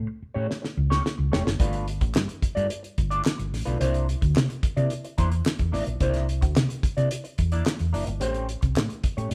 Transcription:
0.07 muted clean electric guitar stroke
0.22 muted fingered electric bass stroke
0.34 A2 A3 C#4 G4 C#5
0.49 muted clean electric guitar stroke, snare
0.62 muted clean electric guitar stroke, snare
0.77 C#2
0.90 A3 C#4 G4 C#5, snare
1.04 muted clean electric guitar stroke, snare
1.18 C#2, muted clean electric guitar stroke
1.32 A3 C#4 G4 C#5, snare
1.46 F#1, muted clean electric guitar stroke, snare
1.59 G1 A3 D4 F4 B4, kick, closed hi-hat
1.73 closed hi-hat
1.88 closed hi-hat
2.01 A1, muted clean electric guitar stroke, kick, closed hi-hat
2.14 G2, muted clean electric guitar stroke, snare, clap
2.28 muted clean electric guitar stroke, closed hi-hat
2.42 muted fingered electric bass stroke, kick, closed hi-hat
2.55 G2 A3 D4 F4 D5, closed hi-hat
2.69 muted clean electric guitar stroke, closed hi-hat
2.83 muted clean electric guitar stroke, closed hi-hat
2.98 G1, kick, closed hi-hat
3.10 A3 D4 F4 D5, closed hi-hat
3.24 muted clean electric guitar stroke, snare, clap
3.38 G1, muted clean electric guitar stroke, closed hi-hat
3.53 A1, snare, open hi-hat
3.65 B1 A3 D4 F4 B4, closed hi-hat
3.79 C2 A#3 D4 E4 C5, closed hi-hat
3.94 closed hi-hat
4.09 closed hi-hat
4.21 D2, muted clean electric guitar stroke, kick, closed hi-hat
4.35 C3, muted clean electric guitar stroke, snare, clap
4.49 muted clean electric guitar stroke, closed hi-hat
4.63 muted fingered electric bass stroke, kick, closed hi-hat
4.76 C3 A#3 D4 E4 D5, closed hi-hat
4.90 closed hi-hat
5.04 muted clean electric guitar stroke, closed hi-hat
5.18 E2 A#3 D4 E4 C5, kick, closed hi-hat
5.32 muted clean electric guitar stroke, closed hi-hat
5.45 muted clean electric guitar stroke, snare, clap
5.59 E2, muted clean electric guitar stroke, kick, closed hi-hat
5.72 A1 A#3 D4 E4 D5, snare, open hi-hat
5.86 A#1, muted clean electric guitar stroke, closed hi-hat
6.00 C2 A#3 D4 E4 C5, kick, closed hi-hat
6.14 snare, closed hi-hat
6.29 closed hi-hat
6.41 D2, muted clean electric guitar stroke, kick, closed hi-hat
6.55 C3, muted clean electric guitar stroke, snare, clap
6.69 muted clean electric guitar stroke, closed hi-hat
6.83 muted fingered electric bass stroke, kick, closed hi-hat
6.97 C3 A#3 D4 E4 D5, closed hi-hat
7.11 muted clean electric guitar stroke, closed hi-hat
7.24 muted clean electric guitar stroke, closed hi-hat
7.38 E2, kick, closed hi-hat
7.52 A#3 D4 E4 D5, closed hi-hat
7.66 muted clean electric guitar stroke, snare, clap
7.79 E2, muted clean electric guitar stroke, closed hi-hat
7.93 F#1 A#3 D4 E4 D5, open hi-hat
8.07 G1, muted clean electric guitar stroke, closed hi-hat
8.20 A1 A3 C#4 G4 C5, closed hi-hat
8.34 closed hi-hat
8.49 closed hi-hat
8.61 C2, muted clean electric guitar stroke, kick, closed hi-hat
8.75 A2, muted clean electric guitar stroke, snare, clap
8.89 muted clean electric guitar stroke, closed hi-hat
9.04 muted fingered electric bass stroke, kick, closed hi-hat
9.17 A2 A3 C#4 G4 C#5, closed hi-hat
9.31 closed hi-hat

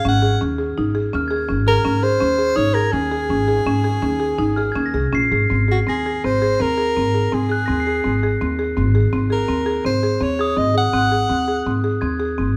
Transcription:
Already playing: F6 G#6
0.05 G#1 C#4 F#5
0.22 G#4
0.41 D#2 C#4
0.58 G#4
0.78 G#1 D#4
0.95 G#4
1.13 D#2 C#4 F6
1.28 G#4 G#6
1.48 G#1 C#4
1.67 G#4 A#4
1.85 G#1 C#4
2.03 G#4 C5
2.20 D#2 C#4
2.39 G#4
2.56 G#1 D#4 C#5
2.74 G#4 A#4 G#6
2.92 D#2 C#4 G#4
3.11 G#4
3.29 G#1 C#4
3.48 G#4
3.66 G#1 C#4
3.84 G#4
4.02 D#2 C#4
4.20 G#4
4.38 G#1 D#4
4.56 G#4 F6
4.72 D#2 C#4 G#6
4.86 A#6
4.94 C2 G#4
5.13 A#1 C#4 C7
5.32 G#1 G#4
5.50 G#1 C4
5.68 F#4 G#4
5.87 D#2 C4 G#4 A#6
6.06 G#4
6.24 G#1 C4 C5
6.42 G#4
6.60 D#2 C4 A#4
6.78 G#4
6.96 G#1 C4
7.15 G#4
7.32 G#1 C4 G#4
7.49 G#4 F#6
7.66 D#2 C4 A#6
7.80 C7
7.87 G#4
8.04 G#1 C4
8.23 G#4
8.41 D#2 C4
8.59 G#4
8.77 G#1 C4
8.95 G#4
9.13 G#1 C4
9.30 G#4 A#4
9.48 D#2 C4
9.66 G#4
9.85 G#1 C4 C5
10.03 G#4
10.21 D#2 C4 C#5
10.39 G#4 D#6
10.57 G#1 C4 D#5
10.74 G#4 F#5
10.93 G#1 C4 F#6
11.12 G#4
11.29 D#2 C4
11.48 G#4
11.66 G#1 C4
11.84 G#4
12.01 D#2 C4 G#6
12.19 G#4
12.38 G#1 C4

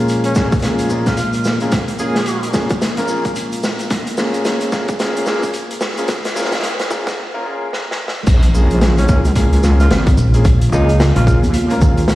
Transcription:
Already playing: A#2 F3 G#3 A#3 C#4 F4 G#4
0.08 closed hi-hat, shaker
0.24 C#4, closed hi-hat, shaker
0.35 A#3 C#4 F4 G#4, kick, snare, shaker
0.52 kick, closed hi-hat, shaker
0.54 closed hi-hat
0.59 closed hi-hat
0.62 A#3 C#4 F4 G#4, snare, closed hi-hat, shaker
0.79 closed hi-hat, shaker
0.90 A#3 C#4 F4 G#4, shaker
1.06 F4, kick, snare, closed hi-hat, shaker
1.17 F4, closed hi-hat, shaker
1.33 closed hi-hat, shaker
1.44 snare, shaker
1.60 A#3 C#4 F4 G#4, closed hi-hat, shaker
1.72 kick, snare, closed hi-hat, shaker
1.88 closed hi-hat, shaker
1.99 A#3 C#4 F4 G#4, shaker
2.15 snare, closed hi-hat, shaker
2.26 closed hi-hat, shaker
2.43 closed hi-hat, shaker
2.53 A#3 C#4 F4 G#4, kick, snare, shaker
2.69 kick, closed hi-hat, shaker
2.81 snare, closed hi-hat, shaker
2.97 A#3 C#4 F4 A#4, closed hi-hat, shaker
3.08 A#3 C#4 F4 G#4, shaker
3.25 kick, closed hi-hat, shaker
3.35 closed hi-hat, shaker
3.52 closed hi-hat, shaker
3.63 snare, shaker
3.79 closed hi-hat, shaker
3.90 kick, snare, closed hi-hat, shaker
4.07 closed hi-hat, shaker
4.17 A#3 C#4 F4 G#4, snare, shaker
4.34 closed hi-hat, shaker
4.45 snare, closed hi-hat, shaker
4.61 closed hi-hat, shaker
4.72 A#3 C#4 F4 G#4, kick, snare, shaker
4.88 kick, closed hi-hat, shaker
4.99 A#3 C#4 F4 G#4, snare, closed hi-hat, shaker
5.16 closed hi-hat, shaker
5.26 A#3 C#4 F4 G#4, snare, shaker
5.43 kick, closed hi-hat, shaker
5.54 closed hi-hat, shaker
5.71 closed hi-hat, shaker
5.81 snare, shaker
5.97 A#3 C#4 F4 G#4, closed hi-hat, shaker
6.08 kick, snare, closed hi-hat, shaker
6.25 snare, closed hi-hat, shaker
6.36 A#3 C#4 F4 G#4, snare, shaker
6.41 snare
6.45 snare
6.51 snare, closed hi-hat, shaker
6.54 snare
6.59 snare
6.63 snare, closed hi-hat, shaker
6.79 snare, closed hi-hat, shaker
6.90 A#3 C#4 F4 G#4, kick, snare, shaker
7.07 kick, snare, closed hi-hat, shaker
7.34 A#3 C#4 F4 A#4
7.45 A#3 C#4 F4 G#4
7.73 snare
7.91 snare
8.08 snare
8.26 A#1 C#3 G#3 A#3 F4, kick, closed hi-hat, crash, shaker
8.43 closed hi-hat, shaker
8.54 A#3 C#4 F4 G#4, shaker
8.70 A#1, closed hi-hat, shaker
8.81 snare, closed hi-hat, shaker
8.98 C#4, closed hi-hat, shaker
9.08 C#2 A#3 C#4 F4 G#4, kick, cross-stick, shaker
9.25 closed hi-hat, shaker
9.35 A#3 C#4 F4 G#4, kick, closed hi-hat, shaker
9.53 closed hi-hat, shaker
9.63 A#3 C#4 F4 G#4, cross-stick, snare, shaker
9.79 F4, closed hi-hat, shaker
9.90 G#1 F4, snare, closed hi-hat, shaker
10.07 kick, closed hi-hat, shaker
10.17 A#1, shaker
10.34 A#3 C#4 F4 G#4, closed hi-hat, shaker
10.45 kick, closed hi-hat, shaker
10.61 closed hi-hat, shaker
10.72 C#2 A#3 C#4 D#4 F4 G#4, shaker
10.89 closed hi-hat, shaker
11.00 snare, closed hi-hat, shaker
11.16 A#1 F4, closed hi-hat, shaker
11.27 A#3 C#4 F4 G#4, kick, shaker
11.43 D#2, closed hi-hat, shaker
11.54 closed hi-hat, shaker
11.70 A#3 C#4 F4 A#4, closed hi-hat, shaker
11.81 D#2 A#3 C#4 F4 G#4, kick, shaker
11.97 closed hi-hat, shaker
12.08 snare, closed hi-hat, shaker

